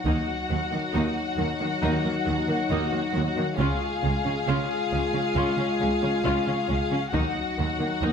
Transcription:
0.04 D#2 D#3 F#3 A#3 D#4 F#4 F#5, taiko
0.49 D#2 D#3 F#3 A#3
0.71 D#3 A#3
0.93 D#2 D#3 A#3 D#4
1.38 D#2 D#3 F#3 A#3
1.60 D#3 A#3
1.82 D#2 D#3 A#3 D#4
2.04 D#3 A#3
2.25 D#2 D#3 F#3 A#3
2.48 D#3 A#3
2.69 D#2 D#3 A#3 D#4
2.91 D#3 A#3
3.13 D#2 D#3 F#3 A#3
3.36 D#3 A#3
3.57 C#2 C#3 G#3 C#4 F4 G#4 F5
4.03 C#2 C#3 G#3 C#4
4.25 C#3 C#4
4.46 C#2 C#3 C#4 F4
4.91 C#2 C#3 G#3 C#4
5.13 C#3 C#4
5.34 C#2 C#3 C#4 F4
5.57 C#3 C#4
5.80 C#2 C#3 G#3 C#4
6.01 C#3 C#4
6.23 C#2 C#3 C#4 F4
6.45 C#3 C#4
6.68 C#2 C#3 G#3 C#4
6.90 C#3 C#4
7.13 D#2 D#3 F#3 A#3 D#4 F#4 F#5, taiko
7.58 D#2 D#3 F#3 A#3
7.79 D#3 A#3
8.02 D#2 D#3 A#3 D#4

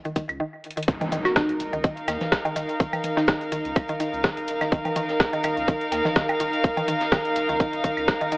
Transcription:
0.05 D#1 D#3, closed hi-hat, cabasa
0.16 D#3, kick, closed hi-hat, cabasa
0.29 C#2, closed hi-hat, cabasa, claves
0.40 D#3
0.64 closed hi-hat
0.71 closed hi-hat
0.77 D#3, closed hi-hat
0.83 closed hi-hat
0.88 D#4, kick, closed hi-hat, impact, cabasa
1.01 D#3, closed hi-hat, low conga, cabasa, low woodblock
1.12 D#3, closed hi-hat, low conga, cabasa
1.17 A#4
1.25 F#4, snare, cabasa, claves
1.36 D#3 D#4, kick, cross-stick, snare, closed hi-hat, cabasa
1.49 closed hi-hat, cabasa
1.60 D#1, closed hi-hat, cabasa
1.73 C#2 D#3, closed hi-hat, cabasa
1.84 D#3, kick, closed hi-hat, cabasa
1.96 F5, closed hi-hat, cabasa
2.08 D#2 D#3, snare, closed hi-hat, cabasa, claves, low woodblock
2.21 D#1, snare, low conga, cabasa
2.32 kick, cross-stick, snare, closed hi-hat, cabasa
2.45 D#3, closed hi-hat, cabasa, low woodblock
2.56 D#1 D#3, closed hi-hat, cabasa
2.69 closed hi-hat, cabasa
2.80 D#3, kick, closed hi-hat, cabasa
2.93 closed hi-hat, low conga, cabasa, claves, low woodblock
3.04 closed hi-hat, low conga, cabasa
3.17 D#3 D#4, snare, cabasa
3.27 D#3, kick, cross-stick, snare, closed hi-hat, cabasa, low woodblock
3.41 closed hi-hat, cabasa
3.52 D#1 D#3, closed hi-hat, cabasa
3.65 C#2, closed hi-hat, cabasa
3.76 kick, closed hi-hat, cabasa, claves
3.88 D#1 D#3, closed hi-hat, cabasa
4.00 D#3, closed hi-hat, cabasa
4.13 C#2, cabasa
4.23 D#3, kick, cross-stick, snare, closed hi-hat, cabasa
4.37 D#1, closed hi-hat, cabasa
4.48 closed hi-hat, cabasa
4.61 D#3, snare, closed hi-hat, cabasa, claves
4.72 D#3, kick, closed hi-hat, cabasa
4.85 closed hi-hat, low conga, cabasa, low woodblock
4.96 D#3, closed hi-hat, low conga, cabasa
5.09 snare, cabasa
5.20 kick, cross-stick, snare, closed hi-hat, cabasa
5.33 D#3, closed hi-hat, cabasa
5.43 D#1 D#3, closed hi-hat, cabasa, claves
5.57 C#2, closed hi-hat, cabasa
5.68 D#3, kick, closed hi-hat, cabasa
5.81 closed hi-hat, cabasa
5.92 D#2, snare, closed hi-hat, cabasa, low woodblock
6.05 D#1 D#3, snare, low conga, cabasa
6.16 D#3, kick, cross-stick, snare, closed hi-hat, cabasa
6.29 closed hi-hat, cabasa, claves, low woodblock
6.40 D#1 D#3, closed hi-hat, cabasa
6.53 closed hi-hat, cabasa
6.64 kick, closed hi-hat, cabasa
6.77 D#3, closed hi-hat, low conga, cabasa, low woodblock
6.88 D#3, closed hi-hat, low conga, cabasa
7.00 snare, closed hi-hat, cabasa
7.12 D#3, kick, cross-stick, snare, closed hi-hat, cabasa, claves, low woodblock
7.25 closed hi-hat, cabasa
7.36 D#1, closed hi-hat, cabasa
7.49 C#2 D#3, closed hi-hat, cabasa
7.60 D#3, kick, closed hi-hat, cabasa
7.73 D#1, closed hi-hat, cabasa
7.84 D#3, kick, closed hi-hat, cabasa
7.97 C#2, cabasa, claves
8.08 kick, cross-stick, snare, closed hi-hat, cabasa
8.21 D#1 D#3, closed hi-hat, cabasa
8.32 D#3, closed hi-hat, cabasa

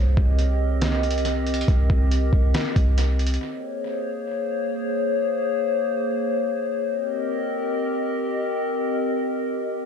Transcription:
Already playing: C2 C4 G4 A#4 D#5
0.17 C2, kick
0.39 closed hi-hat
0.82 snare, closed hi-hat
1.03 closed hi-hat
1.11 closed hi-hat
1.18 closed hi-hat
1.25 closed hi-hat
1.47 closed hi-hat
1.54 closed hi-hat
1.61 closed hi-hat
1.68 C2, kick, closed hi-hat
1.90 C2, kick
2.11 closed hi-hat
2.33 C2, kick
2.54 snare, closed hi-hat
2.76 C2, kick, closed hi-hat
2.98 closed hi-hat
3.19 closed hi-hat
3.27 closed hi-hat
3.34 closed hi-hat
3.41 A#3 G#4 C5 C#5
6.86 C4 G4 A#4 D#5

